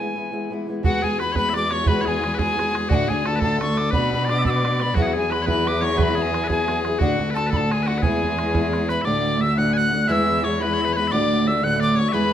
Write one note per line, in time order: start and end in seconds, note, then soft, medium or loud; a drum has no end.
0.00 0.14 E3 medium
0.00 0.15 G#3 soft
0.00 0.16 B3 medium
0.00 0.17 E4 medium
0.00 0.52 G#5 medium
0.15 0.30 E3 medium
0.15 0.31 G#3 soft
0.15 0.31 B3 soft
0.15 0.32 E4 medium
0.31 0.49 E3 soft
0.31 0.50 G#3 medium
0.31 0.51 B3 medium
0.31 0.52 E4 medium
0.50 0.65 E3 medium
0.50 0.67 G#3 medium
0.50 0.68 B3 medium
0.50 0.68 E4 medium
0.66 0.82 E3 soft
0.66 0.83 G#3 soft
0.66 0.83 B3 medium
0.66 0.85 E4 medium
0.83 2.91 E2 medium
0.83 1.01 E3 medium
0.83 1.02 G#3 medium
0.83 1.03 B3 medium
0.83 1.03 F#4 medium
0.83 1.05 F#5 medium
0.83 bodhran medium
1.02 1.16 E3 medium
1.02 1.18 G#3 medium
1.02 1.19 B3 medium
1.02 1.20 F#4 medium
1.02 1.19 G#4 medium
1.02 1.20 G#5 medium
1.02 bodhran soft
1.18 1.33 E3 medium
1.18 1.34 G#3 soft
1.18 1.34 B3 soft
1.18 1.35 F#4 medium
1.18 1.32 B4 medium
1.18 1.35 B5 medium
1.18 bodhran medium
1.32 1.52 E3 medium
1.32 1.53 G#3 medium
1.32 1.54 B3 medium
1.32 1.49 B4 medium
1.32 1.36 C#5 medium
1.32 bodhran medium
1.36 1.55 F#4 medium
1.36 1.54 B5 medium
1.49 1.67 E3 medium
1.49 1.54 E5 medium
1.54 1.69 G#3 medium
1.54 1.70 B3 medium
1.54 1.70 F#4 medium
1.54 1.70 D5 medium
1.54 1.75 D6 loud
1.54 bodhran medium
1.69 1.84 E3 soft
1.69 1.86 G#3 medium
1.69 1.86 B3 medium
1.69 1.87 F#4 medium
1.69 1.87 C#5 medium
1.69 bodhran medium
1.73 1.90 C#6 loud
1.85 2.03 E3 medium
1.85 2.05 G#3 medium
1.85 2.06 B3 loud
1.85 2.06 F#4 medium
1.85 2.01 B4 medium
1.85 2.10 B5 loud
1.85 bodhran medium
2.01 2.20 E3 medium
2.01 2.34 G#4 medium
2.01 2.05 C#5 medium
2.06 2.21 G#3 medium
2.06 2.22 B3 medium
2.06 2.23 F#4 medium
2.06 2.40 G#5 medium
2.06 bodhran soft
2.21 2.37 E3 medium
2.21 2.38 G#3 soft
2.21 2.39 B3 medium
2.21 2.39 F#4 medium
2.21 bodhran medium
2.34 2.38 B4 medium
2.38 2.56 E3 medium
2.38 2.57 G#3 medium
2.38 2.58 B3 medium
2.38 2.58 F#4 medium
2.38 2.89 G#4 medium
2.38 2.76 G#5 loud
2.38 bodhran medium
2.57 2.71 E3 medium
2.57 2.72 G#3 medium
2.57 2.73 B3 medium
2.57 2.75 F#4 medium
2.57 bodhran medium
2.72 2.89 E3 medium
2.72 2.89 G#3 medium
2.72 2.90 B3 medium
2.72 2.90 F#4 medium
2.72 bodhran medium
2.89 3.08 D2 medium
2.89 3.95 D2 medium
2.89 3.08 A2 medium
2.89 3.07 D3 loud
2.89 3.09 A3 medium
2.89 3.08 D4 medium
2.89 3.09 F#4 medium
2.89 3.10 F#4 loud
2.89 2.96 G#5 medium
2.89 bodhran medium
2.95 3.11 F#5 loud
3.08 3.23 D3 medium
3.08 3.25 A3 medium
3.08 3.24 D4 medium
3.08 3.26 F#4 medium
3.08 3.26 G#4 medium
3.08 3.29 G#5 medium
3.08 bodhran soft
3.24 3.41 D3 medium
3.24 3.41 A3 medium
3.24 3.41 D4 medium
3.24 3.42 F#4 medium
3.24 3.36 A4 medium
3.24 3.42 A5 loud
3.24 bodhran medium
3.36 3.91 A4 medium
3.36 3.40 B4 medium
3.41 3.60 D2 medium
3.41 3.60 A2 medium
3.41 3.59 D3 medium
3.41 3.61 A3 medium
3.41 3.61 D4 medium
3.41 3.61 F#4 medium
3.41 3.60 A5 medium
3.41 bodhran medium
3.60 3.74 D3 medium
3.60 3.77 A3 medium
3.60 3.76 D4 medium
3.60 3.77 F#4 medium
3.60 3.79 C#6 loud
3.60 bodhran medium
3.76 3.92 D3 soft
3.76 3.93 A3 soft
3.76 3.92 D4 medium
3.76 3.93 F#4 medium
3.76 3.93 D6 loud
3.76 bodhran medium
3.91 4.97 B2 medium
3.91 4.11 B3 medium
3.91 4.12 D4 medium
3.91 4.12 F#4 medium
3.91 4.25 B4 medium
3.91 4.11 B5 loud
3.91 bodhran medium
3.95 4.13 B4 medium
4.12 4.26 B3 medium
4.12 4.28 D4 medium
4.12 4.28 F#4 medium
4.12 4.29 B4 medium
4.12 4.28 B5 medium
4.12 bodhran soft
4.25 4.43 B3 soft
4.25 4.39 D5 medium
4.29 4.44 D4 medium
4.29 4.45 F#4 medium
4.29 4.46 B4 medium
4.29 4.44 D6 loud
4.29 bodhran medium
4.39 4.95 D5 medium
4.39 4.42 E5 medium
4.44 4.61 B3 medium
4.44 4.63 D4 medium
4.44 4.64 F#4 medium
4.44 4.64 B4 medium
4.44 4.51 E6 medium
4.44 bodhran medium
4.50 4.84 D6 medium
4.62 4.79 B3 medium
4.62 4.80 D4 medium
4.62 4.80 F#4 medium
4.62 4.81 B4 medium
4.62 bodhran medium
4.80 4.95 B3 medium
4.80 4.96 D4 soft
4.80 4.97 F#4 medium
4.80 4.97 B4 medium
4.80 4.97 B5 loud
4.80 bodhran medium
4.95 7.01 E2 loud
4.95 5.14 E3 medium
4.95 5.12 F#3 medium
4.95 5.14 B3 medium
4.95 5.15 E4 medium
4.95 5.03 F#4 medium
4.95 5.16 G#4 medium
4.95 5.14 F#5 medium
4.95 bodhran medium
5.03 5.07 G#4 medium
5.07 5.14 F#4 medium
5.13 5.28 F#3 medium
5.13 5.29 B3 medium
5.13 5.30 E4 medium
5.13 5.30 G#4 medium
5.13 5.31 G#4 medium
5.18 5.33 G#5 medium
5.30 5.45 F#3 medium
5.30 5.45 B3 medium
5.30 5.46 E4 medium
5.30 5.46 G#4 medium
5.30 5.42 B4 medium
5.30 5.48 B5 medium
5.30 bodhran medium
5.42 5.65 E3 medium
5.42 5.81 B4 medium
5.42 5.46 C#5 medium
5.46 5.63 F#3 medium
5.46 5.64 B3 medium
5.46 5.65 E4 medium
5.46 5.66 G#4 medium
5.46 5.69 B5 loud
5.46 bodhran medium
5.64 5.78 F#3 medium
5.64 5.80 B3 medium
5.64 5.81 E4 medium
5.64 5.81 G#4 medium
5.64 5.86 D6 loud
5.64 bodhran medium
5.80 5.95 F#3 medium
5.80 5.96 B3 medium
5.80 5.96 E4 medium
5.80 5.97 G#4 medium
5.80 5.98 C#5 medium
5.80 bodhran medium
5.84 5.98 C#6 loud
5.96 6.16 E3 medium
5.96 6.14 F#3 medium
5.96 6.15 B3 medium
5.96 6.16 E4 medium
5.96 6.17 G#4 medium
5.96 6.15 B4 medium
5.96 6.04 C#6 medium
5.96 bodhran medium
6.03 6.18 B5 medium
6.15 6.31 F#3 medium
6.15 6.32 B3 medium
6.15 6.32 E4 medium
6.15 6.44 G#4 medium
6.15 6.34 G#4 medium
6.15 6.23 B5 medium
6.15 bodhran soft
6.22 6.50 G#5 medium
6.32 6.47 F#3 medium
6.32 6.48 B3 medium
6.32 6.49 E4 medium
6.32 6.49 G#4 medium
6.32 bodhran medium
6.44 6.99 G#4 medium
6.44 6.47 B4 medium
6.48 6.68 E3 medium
6.48 6.65 F#3 medium
6.48 6.66 B3 medium
6.48 6.67 E4 medium
6.48 6.68 G#4 medium
6.48 6.79 G#5 medium
6.48 bodhran medium
6.66 6.82 F#3 medium
6.66 6.83 B3 medium
6.66 6.84 E4 medium
6.66 6.85 G#4 medium
6.66 bodhran medium
6.83 7.00 F#3 medium
6.83 7.01 B3 medium
6.83 7.01 E4 medium
6.83 7.01 G#4 medium
6.83 bodhran medium
6.99 7.19 D2 medium
6.99 8.04 D2 medium
6.99 7.19 A2 medium
6.99 7.17 D3 medium
6.99 7.20 A3 medium
6.99 7.18 D4 medium
6.99 7.30 F#4 medium
6.99 7.20 F#4 medium
6.99 7.19 F#5 medium
6.99 bodhran medium
7.18 7.33 D3 medium
7.18 7.36 A3 medium
7.18 7.34 D4 medium
7.18 7.36 F#4 medium
7.18 bodhran soft
7.30 7.51 D3 medium
7.30 7.47 A4 medium
7.30 7.34 B4 medium
7.35 7.52 A3 medium
7.35 7.52 D4 medium
7.35 7.52 F#4 medium
7.35 7.51 A5 medium
7.35 bodhran medium
7.47 7.71 A4 medium
7.47 7.50 B4 medium
7.52 7.71 D2 medium
7.52 7.71 A2 medium
7.52 7.69 D3 medium
7.52 7.72 A3 medium
7.52 7.70 D4 medium
7.52 7.72 F#4 medium
7.52 7.58 B5 medium
7.52 bodhran medium
7.57 7.75 A5 loud
7.70 7.85 D3 medium
7.70 7.87 A3 medium
7.70 7.86 D4 medium
7.70 7.89 F#4 medium
7.70 7.83 G#4 medium
7.70 7.89 G#5 medium
7.70 bodhran medium
7.83 8.02 D3 medium
7.83 7.98 F#4 medium
7.83 7.86 B4 medium
7.87 8.04 A3 medium
7.87 8.03 D4 soft
7.87 8.04 F#4 medium
7.87 8.05 F#5 medium
7.87 bodhran medium
7.98 8.89 G#4 medium
7.98 8.02 B4 medium
8.02 9.04 E2 loud
8.02 8.20 E3 medium
8.02 8.21 G#3 medium
8.02 8.22 B3 loud
8.02 8.23 E4 loud
8.02 8.74 G#5 medium
8.02 bodhran medium
8.21 8.36 E3 medium
8.21 8.37 G#3 medium
8.21 8.38 B3 medium
8.21 8.39 E4 medium
8.21 bodhran soft
8.37 8.52 E3 medium
8.37 8.52 G#3 medium
8.37 8.54 B3 soft
8.37 8.54 E4 medium
8.37 bodhran medium
8.53 8.71 E3 medium
8.53 8.72 G#3 medium
8.53 8.73 B3 medium
8.53 8.74 E4 medium
8.53 bodhran medium
8.72 8.87 E3 medium
8.72 8.89 G#3 medium
8.72 8.89 B3 medium
8.72 8.90 E4 medium
8.72 bodhran medium
8.89 9.05 E3 medium
8.89 9.06 G#3 medium
8.89 9.07 B3 medium
8.89 9.07 E4 medium
8.89 9.02 B4 medium
8.89 9.06 B5 medium
8.89 bodhran medium
9.02 9.41 D2 medium
9.02 9.41 A2 medium
9.02 9.41 D5 medium
9.02 9.05 E5 medium
9.02 9.44 D6 loud
9.06 10.11 D2 loud
9.06 9.38 D3 medium
9.06 9.39 A3 loud
9.06 9.41 D4 medium
9.06 9.42 F#4 medium
9.39 9.56 D3 medium
9.39 9.56 A3 medium
9.39 9.57 D4 soft
9.39 9.57 F#4 medium
9.39 9.58 E5 medium
9.39 9.57 E6 loud
9.56 9.92 D2 medium
9.56 9.92 A2 medium
9.56 9.90 D3 medium
9.56 9.91 A3 medium
9.56 9.92 D4 medium
9.56 9.93 F#4 medium
9.56 9.73 F#5 medium
9.56 9.75 F#6 loud
9.73 9.78 G#5 medium
9.73 10.08 F#6 loud
9.78 10.08 F#5 medium
9.91 10.07 D3 medium
9.91 10.08 A3 medium
9.91 10.09 D4 medium
9.91 10.09 F#4 medium
10.07 11.13 E2 medium
10.07 10.43 E3 loud
10.07 10.44 G#3 loud
10.07 10.44 B3 loud
10.07 10.44 E4 medium
10.07 10.44 E5 medium
10.07 10.13 F#6 loud
10.12 10.46 E6 loud
10.44 10.59 E3 medium
10.44 10.59 G#3 medium
10.44 10.60 B3 medium
10.44 10.61 E4 medium
10.44 10.62 C#5 medium
10.44 10.62 C#6 loud
10.60 10.93 E3 medium
10.60 10.94 G#3 medium
10.60 10.96 B3 medium
10.60 10.96 E4 medium
10.60 10.74 B4 medium
10.60 10.95 B5 medium
10.73 10.82 C#5 medium
10.82 10.93 B4 medium
10.82 10.85 E5 medium
10.93 11.11 E3 medium
10.93 11.11 G#3 medium
10.93 11.08 B4 medium
10.93 10.97 C#5 medium
10.93 11.14 B5 loud
10.97 11.12 B3 medium
10.97 11.12 E4 medium
11.08 11.46 D2 medium
11.08 11.47 D5 medium
11.08 11.11 E5 medium
11.12 12.15 D2 medium
11.12 11.46 A2 medium
11.12 11.44 D3 medium
11.12 11.46 A3 medium
11.12 11.46 D4 loud
11.12 11.47 F#4 loud
11.12 11.49 D6 loud
11.46 11.62 D3 soft
11.46 11.62 A3 medium
11.46 11.62 D4 medium
11.46 11.63 F#4 medium
11.46 11.64 E5 medium
11.46 11.65 E6 loud
11.62 11.97 D2 medium
11.62 11.97 A2 medium
11.62 11.95 D3 medium
11.62 11.96 A3 medium
11.62 11.97 D4 medium
11.62 11.98 F#4 medium
11.62 11.80 F#5 medium
11.62 11.82 F#6 loud
11.80 11.96 D5 medium
11.80 12.01 D6 loud
11.96 12.11 D3 medium
11.96 12.12 A3 medium
11.96 12.13 D4 medium
11.96 12.14 F#4 medium
11.96 12.09 C#5 medium
11.96 12.16 C#6 medium
12.09 12.33 E3 loud
12.09 12.33 B4 medium
12.09 12.12 E5 medium
12.13 12.33 E2 medium
12.13 12.33 G#3 loud
12.13 12.33 B3 medium
12.13 12.33 E4 medium
12.13 12.33 B5 loud